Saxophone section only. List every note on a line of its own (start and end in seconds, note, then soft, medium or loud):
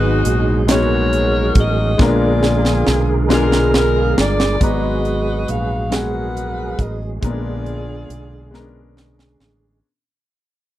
0.00 0.66 D#4 loud
0.00 0.66 F#4 loud
0.00 0.22 B4 loud
0.71 1.96 F#4 medium
0.71 1.96 A#4 medium
0.71 1.53 C#5 loud
1.60 2.02 D#5 loud
2.01 3.27 F4 medium
2.01 3.27 G#4 medium
2.01 2.99 D5 loud
3.34 3.73 A#4 medium
3.77 4.16 A#4 medium
4.20 4.62 D5 medium
4.63 5.89 F#4 medium
4.63 5.89 B4 medium
4.63 5.49 D#5 medium
5.51 5.93 F5 medium
5.94 7.07 A#4 medium
5.94 7.07 B4 medium
5.94 6.80 F#5 medium
6.81 7.11 D#5 medium
7.24 8.93 F4 medium
7.24 8.94 G#4 medium
7.24 8.93 D5 medium